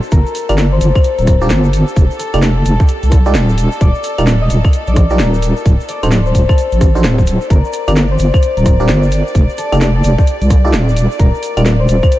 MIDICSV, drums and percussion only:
0, 0, Header, 1, 2, 480
1, 0, Start_track
1, 0, Key_signature, -2, "minor"
1, 0, Tempo, 461538
1, 122, Time_signature, 4, 2, 24, 8
1, 12679, End_track
2, 0, Start_track
2, 0, Title_t, "Drums"
2, 29, Note_on_c, 9, 82, 35
2, 120, Note_off_c, 9, 82, 0
2, 120, Note_on_c, 9, 82, 52
2, 123, Note_on_c, 9, 36, 122
2, 123, Note_on_c, 9, 42, 65
2, 224, Note_off_c, 9, 82, 0
2, 227, Note_off_c, 9, 36, 0
2, 227, Note_off_c, 9, 42, 0
2, 274, Note_on_c, 9, 82, 37
2, 363, Note_on_c, 9, 46, 112
2, 371, Note_off_c, 9, 82, 0
2, 371, Note_on_c, 9, 82, 97
2, 467, Note_off_c, 9, 46, 0
2, 475, Note_off_c, 9, 82, 0
2, 512, Note_on_c, 9, 42, 66
2, 512, Note_on_c, 9, 75, 77
2, 515, Note_on_c, 9, 82, 45
2, 603, Note_off_c, 9, 42, 0
2, 603, Note_on_c, 9, 38, 118
2, 603, Note_on_c, 9, 42, 67
2, 604, Note_off_c, 9, 82, 0
2, 604, Note_on_c, 9, 82, 49
2, 616, Note_off_c, 9, 75, 0
2, 707, Note_off_c, 9, 38, 0
2, 707, Note_off_c, 9, 42, 0
2, 708, Note_off_c, 9, 82, 0
2, 843, Note_on_c, 9, 46, 110
2, 843, Note_on_c, 9, 82, 100
2, 947, Note_off_c, 9, 46, 0
2, 947, Note_off_c, 9, 82, 0
2, 992, Note_on_c, 9, 36, 109
2, 992, Note_on_c, 9, 82, 40
2, 993, Note_on_c, 9, 37, 35
2, 993, Note_on_c, 9, 75, 61
2, 1079, Note_off_c, 9, 82, 0
2, 1079, Note_on_c, 9, 82, 49
2, 1085, Note_on_c, 9, 42, 64
2, 1096, Note_off_c, 9, 36, 0
2, 1097, Note_off_c, 9, 37, 0
2, 1097, Note_off_c, 9, 75, 0
2, 1183, Note_off_c, 9, 82, 0
2, 1189, Note_off_c, 9, 42, 0
2, 1233, Note_on_c, 9, 42, 35
2, 1234, Note_on_c, 9, 82, 35
2, 1322, Note_off_c, 9, 82, 0
2, 1322, Note_on_c, 9, 82, 90
2, 1323, Note_on_c, 9, 36, 103
2, 1324, Note_on_c, 9, 37, 59
2, 1324, Note_on_c, 9, 46, 112
2, 1337, Note_off_c, 9, 42, 0
2, 1426, Note_off_c, 9, 82, 0
2, 1427, Note_off_c, 9, 36, 0
2, 1428, Note_off_c, 9, 37, 0
2, 1428, Note_off_c, 9, 46, 0
2, 1471, Note_on_c, 9, 82, 38
2, 1473, Note_on_c, 9, 37, 33
2, 1555, Note_off_c, 9, 82, 0
2, 1555, Note_on_c, 9, 82, 49
2, 1563, Note_on_c, 9, 38, 121
2, 1563, Note_on_c, 9, 42, 70
2, 1577, Note_off_c, 9, 37, 0
2, 1659, Note_off_c, 9, 82, 0
2, 1667, Note_off_c, 9, 38, 0
2, 1667, Note_off_c, 9, 42, 0
2, 1708, Note_on_c, 9, 82, 41
2, 1802, Note_on_c, 9, 46, 115
2, 1807, Note_off_c, 9, 82, 0
2, 1807, Note_on_c, 9, 82, 100
2, 1906, Note_off_c, 9, 46, 0
2, 1911, Note_off_c, 9, 82, 0
2, 1950, Note_on_c, 9, 82, 43
2, 2042, Note_on_c, 9, 42, 63
2, 2043, Note_on_c, 9, 36, 125
2, 2047, Note_off_c, 9, 82, 0
2, 2047, Note_on_c, 9, 82, 50
2, 2146, Note_off_c, 9, 42, 0
2, 2147, Note_off_c, 9, 36, 0
2, 2151, Note_off_c, 9, 82, 0
2, 2194, Note_on_c, 9, 82, 37
2, 2283, Note_on_c, 9, 46, 107
2, 2286, Note_off_c, 9, 82, 0
2, 2286, Note_on_c, 9, 82, 98
2, 2387, Note_off_c, 9, 46, 0
2, 2390, Note_off_c, 9, 82, 0
2, 2429, Note_on_c, 9, 82, 41
2, 2432, Note_on_c, 9, 42, 64
2, 2432, Note_on_c, 9, 75, 77
2, 2522, Note_off_c, 9, 42, 0
2, 2522, Note_off_c, 9, 82, 0
2, 2522, Note_on_c, 9, 38, 127
2, 2522, Note_on_c, 9, 42, 65
2, 2522, Note_on_c, 9, 82, 56
2, 2536, Note_off_c, 9, 75, 0
2, 2626, Note_off_c, 9, 38, 0
2, 2626, Note_off_c, 9, 42, 0
2, 2626, Note_off_c, 9, 82, 0
2, 2762, Note_on_c, 9, 82, 93
2, 2763, Note_on_c, 9, 46, 105
2, 2866, Note_off_c, 9, 82, 0
2, 2867, Note_off_c, 9, 46, 0
2, 2911, Note_on_c, 9, 36, 112
2, 2911, Note_on_c, 9, 37, 34
2, 2913, Note_on_c, 9, 82, 42
2, 2997, Note_off_c, 9, 82, 0
2, 2997, Note_on_c, 9, 82, 57
2, 3002, Note_on_c, 9, 42, 61
2, 3015, Note_off_c, 9, 36, 0
2, 3015, Note_off_c, 9, 37, 0
2, 3101, Note_off_c, 9, 82, 0
2, 3106, Note_off_c, 9, 42, 0
2, 3151, Note_on_c, 9, 42, 36
2, 3153, Note_on_c, 9, 82, 39
2, 3242, Note_on_c, 9, 36, 114
2, 3242, Note_on_c, 9, 37, 58
2, 3242, Note_on_c, 9, 46, 109
2, 3243, Note_off_c, 9, 82, 0
2, 3243, Note_on_c, 9, 82, 86
2, 3255, Note_off_c, 9, 42, 0
2, 3346, Note_off_c, 9, 36, 0
2, 3346, Note_off_c, 9, 37, 0
2, 3346, Note_off_c, 9, 46, 0
2, 3347, Note_off_c, 9, 82, 0
2, 3384, Note_on_c, 9, 82, 39
2, 3391, Note_on_c, 9, 37, 34
2, 3479, Note_off_c, 9, 82, 0
2, 3479, Note_on_c, 9, 82, 57
2, 3482, Note_on_c, 9, 38, 126
2, 3482, Note_on_c, 9, 42, 67
2, 3495, Note_off_c, 9, 37, 0
2, 3583, Note_off_c, 9, 82, 0
2, 3586, Note_off_c, 9, 38, 0
2, 3586, Note_off_c, 9, 42, 0
2, 3632, Note_on_c, 9, 82, 37
2, 3720, Note_on_c, 9, 46, 108
2, 3726, Note_off_c, 9, 82, 0
2, 3726, Note_on_c, 9, 82, 90
2, 3824, Note_off_c, 9, 46, 0
2, 3830, Note_off_c, 9, 82, 0
2, 3866, Note_on_c, 9, 82, 44
2, 3961, Note_on_c, 9, 42, 63
2, 3962, Note_on_c, 9, 36, 127
2, 3963, Note_off_c, 9, 82, 0
2, 3963, Note_on_c, 9, 82, 52
2, 4065, Note_off_c, 9, 42, 0
2, 4066, Note_off_c, 9, 36, 0
2, 4067, Note_off_c, 9, 82, 0
2, 4101, Note_on_c, 9, 82, 36
2, 4199, Note_off_c, 9, 82, 0
2, 4199, Note_on_c, 9, 82, 89
2, 4201, Note_on_c, 9, 46, 108
2, 4303, Note_off_c, 9, 82, 0
2, 4305, Note_off_c, 9, 46, 0
2, 4351, Note_on_c, 9, 42, 62
2, 4351, Note_on_c, 9, 75, 80
2, 4353, Note_on_c, 9, 82, 41
2, 4440, Note_off_c, 9, 42, 0
2, 4440, Note_on_c, 9, 38, 127
2, 4440, Note_on_c, 9, 42, 65
2, 4448, Note_off_c, 9, 82, 0
2, 4448, Note_on_c, 9, 82, 59
2, 4455, Note_off_c, 9, 75, 0
2, 4544, Note_off_c, 9, 38, 0
2, 4544, Note_off_c, 9, 42, 0
2, 4552, Note_off_c, 9, 82, 0
2, 4680, Note_on_c, 9, 46, 103
2, 4682, Note_on_c, 9, 82, 97
2, 4784, Note_off_c, 9, 46, 0
2, 4786, Note_off_c, 9, 82, 0
2, 4830, Note_on_c, 9, 82, 39
2, 4831, Note_on_c, 9, 36, 108
2, 4831, Note_on_c, 9, 37, 34
2, 4831, Note_on_c, 9, 75, 64
2, 4918, Note_off_c, 9, 82, 0
2, 4918, Note_on_c, 9, 82, 54
2, 4921, Note_on_c, 9, 42, 65
2, 4935, Note_off_c, 9, 36, 0
2, 4935, Note_off_c, 9, 37, 0
2, 4935, Note_off_c, 9, 75, 0
2, 5022, Note_off_c, 9, 82, 0
2, 5025, Note_off_c, 9, 42, 0
2, 5065, Note_on_c, 9, 82, 36
2, 5070, Note_on_c, 9, 42, 34
2, 5159, Note_off_c, 9, 82, 0
2, 5159, Note_on_c, 9, 82, 99
2, 5162, Note_on_c, 9, 36, 115
2, 5162, Note_on_c, 9, 37, 59
2, 5162, Note_on_c, 9, 46, 104
2, 5174, Note_off_c, 9, 42, 0
2, 5263, Note_off_c, 9, 82, 0
2, 5266, Note_off_c, 9, 36, 0
2, 5266, Note_off_c, 9, 37, 0
2, 5266, Note_off_c, 9, 46, 0
2, 5303, Note_on_c, 9, 82, 39
2, 5311, Note_on_c, 9, 37, 33
2, 5402, Note_on_c, 9, 38, 127
2, 5402, Note_on_c, 9, 42, 65
2, 5403, Note_off_c, 9, 82, 0
2, 5403, Note_on_c, 9, 82, 58
2, 5415, Note_off_c, 9, 37, 0
2, 5506, Note_off_c, 9, 38, 0
2, 5506, Note_off_c, 9, 42, 0
2, 5507, Note_off_c, 9, 82, 0
2, 5554, Note_on_c, 9, 82, 40
2, 5641, Note_on_c, 9, 46, 109
2, 5642, Note_off_c, 9, 82, 0
2, 5642, Note_on_c, 9, 82, 93
2, 5745, Note_off_c, 9, 46, 0
2, 5746, Note_off_c, 9, 82, 0
2, 5788, Note_on_c, 9, 82, 39
2, 5882, Note_on_c, 9, 36, 123
2, 5882, Note_on_c, 9, 42, 65
2, 5888, Note_off_c, 9, 82, 0
2, 5888, Note_on_c, 9, 82, 52
2, 5986, Note_off_c, 9, 36, 0
2, 5986, Note_off_c, 9, 42, 0
2, 5992, Note_off_c, 9, 82, 0
2, 6033, Note_on_c, 9, 82, 40
2, 6122, Note_off_c, 9, 82, 0
2, 6122, Note_on_c, 9, 46, 104
2, 6122, Note_on_c, 9, 82, 90
2, 6226, Note_off_c, 9, 46, 0
2, 6226, Note_off_c, 9, 82, 0
2, 6273, Note_on_c, 9, 42, 64
2, 6273, Note_on_c, 9, 75, 83
2, 6274, Note_on_c, 9, 82, 43
2, 6362, Note_off_c, 9, 42, 0
2, 6362, Note_on_c, 9, 38, 127
2, 6362, Note_on_c, 9, 42, 68
2, 6363, Note_off_c, 9, 82, 0
2, 6363, Note_on_c, 9, 82, 55
2, 6377, Note_off_c, 9, 75, 0
2, 6466, Note_off_c, 9, 38, 0
2, 6466, Note_off_c, 9, 42, 0
2, 6467, Note_off_c, 9, 82, 0
2, 6511, Note_on_c, 9, 82, 36
2, 6602, Note_on_c, 9, 36, 62
2, 6603, Note_on_c, 9, 46, 104
2, 6605, Note_off_c, 9, 82, 0
2, 6605, Note_on_c, 9, 82, 96
2, 6706, Note_off_c, 9, 36, 0
2, 6707, Note_off_c, 9, 46, 0
2, 6709, Note_off_c, 9, 82, 0
2, 6751, Note_on_c, 9, 36, 109
2, 6752, Note_on_c, 9, 37, 33
2, 6752, Note_on_c, 9, 75, 66
2, 6757, Note_on_c, 9, 82, 40
2, 6843, Note_on_c, 9, 42, 66
2, 6849, Note_off_c, 9, 82, 0
2, 6849, Note_on_c, 9, 82, 60
2, 6855, Note_off_c, 9, 36, 0
2, 6856, Note_off_c, 9, 37, 0
2, 6856, Note_off_c, 9, 75, 0
2, 6947, Note_off_c, 9, 42, 0
2, 6953, Note_off_c, 9, 82, 0
2, 6987, Note_on_c, 9, 82, 35
2, 6992, Note_on_c, 9, 42, 34
2, 7083, Note_on_c, 9, 36, 113
2, 7083, Note_on_c, 9, 37, 55
2, 7083, Note_on_c, 9, 46, 97
2, 7086, Note_off_c, 9, 82, 0
2, 7086, Note_on_c, 9, 82, 94
2, 7096, Note_off_c, 9, 42, 0
2, 7187, Note_off_c, 9, 36, 0
2, 7187, Note_off_c, 9, 37, 0
2, 7187, Note_off_c, 9, 46, 0
2, 7190, Note_off_c, 9, 82, 0
2, 7233, Note_on_c, 9, 37, 31
2, 7237, Note_on_c, 9, 82, 43
2, 7324, Note_off_c, 9, 82, 0
2, 7324, Note_on_c, 9, 38, 125
2, 7324, Note_on_c, 9, 42, 66
2, 7324, Note_on_c, 9, 82, 55
2, 7337, Note_off_c, 9, 37, 0
2, 7428, Note_off_c, 9, 38, 0
2, 7428, Note_off_c, 9, 42, 0
2, 7428, Note_off_c, 9, 82, 0
2, 7471, Note_on_c, 9, 36, 69
2, 7476, Note_on_c, 9, 82, 42
2, 7559, Note_off_c, 9, 82, 0
2, 7559, Note_on_c, 9, 82, 103
2, 7564, Note_on_c, 9, 46, 105
2, 7575, Note_off_c, 9, 36, 0
2, 7663, Note_off_c, 9, 82, 0
2, 7668, Note_off_c, 9, 46, 0
2, 7708, Note_on_c, 9, 82, 44
2, 7803, Note_on_c, 9, 36, 123
2, 7805, Note_on_c, 9, 42, 65
2, 7812, Note_off_c, 9, 82, 0
2, 7813, Note_on_c, 9, 82, 49
2, 7907, Note_off_c, 9, 36, 0
2, 7909, Note_off_c, 9, 42, 0
2, 7917, Note_off_c, 9, 82, 0
2, 7952, Note_on_c, 9, 82, 37
2, 8038, Note_off_c, 9, 82, 0
2, 8038, Note_on_c, 9, 82, 81
2, 8044, Note_on_c, 9, 46, 104
2, 8142, Note_off_c, 9, 82, 0
2, 8148, Note_off_c, 9, 46, 0
2, 8191, Note_on_c, 9, 82, 40
2, 8194, Note_on_c, 9, 42, 66
2, 8194, Note_on_c, 9, 75, 85
2, 8279, Note_off_c, 9, 82, 0
2, 8279, Note_on_c, 9, 82, 49
2, 8285, Note_off_c, 9, 42, 0
2, 8285, Note_on_c, 9, 38, 122
2, 8285, Note_on_c, 9, 42, 68
2, 8298, Note_off_c, 9, 75, 0
2, 8383, Note_off_c, 9, 82, 0
2, 8389, Note_off_c, 9, 38, 0
2, 8389, Note_off_c, 9, 42, 0
2, 8517, Note_on_c, 9, 82, 98
2, 8525, Note_on_c, 9, 46, 102
2, 8621, Note_off_c, 9, 82, 0
2, 8629, Note_off_c, 9, 46, 0
2, 8672, Note_on_c, 9, 36, 105
2, 8674, Note_on_c, 9, 37, 32
2, 8674, Note_on_c, 9, 75, 70
2, 8679, Note_on_c, 9, 82, 40
2, 8760, Note_off_c, 9, 82, 0
2, 8760, Note_on_c, 9, 82, 57
2, 8764, Note_on_c, 9, 42, 69
2, 8776, Note_off_c, 9, 36, 0
2, 8778, Note_off_c, 9, 37, 0
2, 8778, Note_off_c, 9, 75, 0
2, 8864, Note_off_c, 9, 82, 0
2, 8868, Note_off_c, 9, 42, 0
2, 8914, Note_on_c, 9, 42, 37
2, 8919, Note_on_c, 9, 82, 37
2, 9003, Note_off_c, 9, 82, 0
2, 9003, Note_on_c, 9, 36, 109
2, 9003, Note_on_c, 9, 82, 94
2, 9004, Note_on_c, 9, 37, 55
2, 9004, Note_on_c, 9, 46, 103
2, 9018, Note_off_c, 9, 42, 0
2, 9107, Note_off_c, 9, 36, 0
2, 9107, Note_off_c, 9, 82, 0
2, 9108, Note_off_c, 9, 37, 0
2, 9108, Note_off_c, 9, 46, 0
2, 9151, Note_on_c, 9, 82, 38
2, 9152, Note_on_c, 9, 37, 30
2, 9240, Note_off_c, 9, 82, 0
2, 9240, Note_on_c, 9, 82, 49
2, 9243, Note_on_c, 9, 38, 126
2, 9243, Note_on_c, 9, 42, 68
2, 9256, Note_off_c, 9, 37, 0
2, 9344, Note_off_c, 9, 82, 0
2, 9347, Note_off_c, 9, 38, 0
2, 9347, Note_off_c, 9, 42, 0
2, 9390, Note_on_c, 9, 82, 35
2, 9479, Note_off_c, 9, 82, 0
2, 9479, Note_on_c, 9, 82, 87
2, 9484, Note_on_c, 9, 46, 103
2, 9583, Note_off_c, 9, 82, 0
2, 9588, Note_off_c, 9, 46, 0
2, 9638, Note_on_c, 9, 82, 40
2, 9723, Note_on_c, 9, 36, 117
2, 9724, Note_on_c, 9, 42, 66
2, 9727, Note_off_c, 9, 82, 0
2, 9727, Note_on_c, 9, 82, 52
2, 9827, Note_off_c, 9, 36, 0
2, 9828, Note_off_c, 9, 42, 0
2, 9831, Note_off_c, 9, 82, 0
2, 9874, Note_on_c, 9, 82, 34
2, 9961, Note_off_c, 9, 82, 0
2, 9961, Note_on_c, 9, 82, 96
2, 9964, Note_on_c, 9, 46, 106
2, 10065, Note_off_c, 9, 82, 0
2, 10068, Note_off_c, 9, 46, 0
2, 10113, Note_on_c, 9, 42, 69
2, 10113, Note_on_c, 9, 75, 83
2, 10121, Note_on_c, 9, 82, 40
2, 10204, Note_off_c, 9, 42, 0
2, 10204, Note_on_c, 9, 38, 118
2, 10204, Note_on_c, 9, 42, 73
2, 10208, Note_off_c, 9, 82, 0
2, 10208, Note_on_c, 9, 82, 58
2, 10217, Note_off_c, 9, 75, 0
2, 10308, Note_off_c, 9, 38, 0
2, 10308, Note_off_c, 9, 42, 0
2, 10312, Note_off_c, 9, 82, 0
2, 10442, Note_on_c, 9, 82, 94
2, 10445, Note_on_c, 9, 46, 106
2, 10546, Note_off_c, 9, 82, 0
2, 10549, Note_off_c, 9, 46, 0
2, 10592, Note_on_c, 9, 36, 104
2, 10594, Note_on_c, 9, 37, 32
2, 10598, Note_on_c, 9, 82, 42
2, 10678, Note_off_c, 9, 82, 0
2, 10678, Note_on_c, 9, 82, 46
2, 10684, Note_on_c, 9, 42, 67
2, 10696, Note_off_c, 9, 36, 0
2, 10698, Note_off_c, 9, 37, 0
2, 10782, Note_off_c, 9, 82, 0
2, 10788, Note_off_c, 9, 42, 0
2, 10829, Note_on_c, 9, 82, 39
2, 10832, Note_on_c, 9, 42, 38
2, 10923, Note_off_c, 9, 82, 0
2, 10923, Note_on_c, 9, 36, 105
2, 10923, Note_on_c, 9, 82, 84
2, 10925, Note_on_c, 9, 37, 55
2, 10925, Note_on_c, 9, 46, 109
2, 10936, Note_off_c, 9, 42, 0
2, 11027, Note_off_c, 9, 36, 0
2, 11027, Note_off_c, 9, 82, 0
2, 11029, Note_off_c, 9, 37, 0
2, 11029, Note_off_c, 9, 46, 0
2, 11074, Note_on_c, 9, 37, 31
2, 11087, Note_on_c, 9, 82, 38
2, 11160, Note_off_c, 9, 82, 0
2, 11160, Note_on_c, 9, 82, 56
2, 11165, Note_on_c, 9, 38, 116
2, 11165, Note_on_c, 9, 42, 69
2, 11178, Note_off_c, 9, 37, 0
2, 11264, Note_off_c, 9, 82, 0
2, 11269, Note_off_c, 9, 38, 0
2, 11269, Note_off_c, 9, 42, 0
2, 11324, Note_on_c, 9, 82, 37
2, 11404, Note_on_c, 9, 46, 112
2, 11412, Note_off_c, 9, 82, 0
2, 11412, Note_on_c, 9, 82, 89
2, 11508, Note_off_c, 9, 46, 0
2, 11516, Note_off_c, 9, 82, 0
2, 11555, Note_on_c, 9, 82, 35
2, 11642, Note_on_c, 9, 36, 116
2, 11643, Note_off_c, 9, 82, 0
2, 11643, Note_on_c, 9, 42, 69
2, 11643, Note_on_c, 9, 82, 52
2, 11746, Note_off_c, 9, 36, 0
2, 11747, Note_off_c, 9, 42, 0
2, 11747, Note_off_c, 9, 82, 0
2, 11800, Note_on_c, 9, 82, 31
2, 11884, Note_on_c, 9, 46, 111
2, 11893, Note_off_c, 9, 82, 0
2, 11893, Note_on_c, 9, 82, 80
2, 11988, Note_off_c, 9, 46, 0
2, 11997, Note_off_c, 9, 82, 0
2, 12033, Note_on_c, 9, 42, 71
2, 12033, Note_on_c, 9, 75, 79
2, 12036, Note_on_c, 9, 82, 40
2, 12123, Note_off_c, 9, 42, 0
2, 12123, Note_on_c, 9, 38, 112
2, 12123, Note_on_c, 9, 42, 71
2, 12126, Note_off_c, 9, 82, 0
2, 12126, Note_on_c, 9, 82, 49
2, 12137, Note_off_c, 9, 75, 0
2, 12227, Note_off_c, 9, 38, 0
2, 12227, Note_off_c, 9, 42, 0
2, 12230, Note_off_c, 9, 82, 0
2, 12361, Note_on_c, 9, 82, 86
2, 12364, Note_on_c, 9, 46, 109
2, 12465, Note_off_c, 9, 82, 0
2, 12468, Note_off_c, 9, 46, 0
2, 12511, Note_on_c, 9, 36, 102
2, 12513, Note_on_c, 9, 37, 32
2, 12513, Note_on_c, 9, 75, 67
2, 12514, Note_on_c, 9, 82, 43
2, 12603, Note_on_c, 9, 42, 72
2, 12604, Note_off_c, 9, 82, 0
2, 12604, Note_on_c, 9, 82, 50
2, 12615, Note_off_c, 9, 36, 0
2, 12617, Note_off_c, 9, 37, 0
2, 12617, Note_off_c, 9, 75, 0
2, 12679, Note_off_c, 9, 42, 0
2, 12679, Note_off_c, 9, 82, 0
2, 12679, End_track
0, 0, End_of_file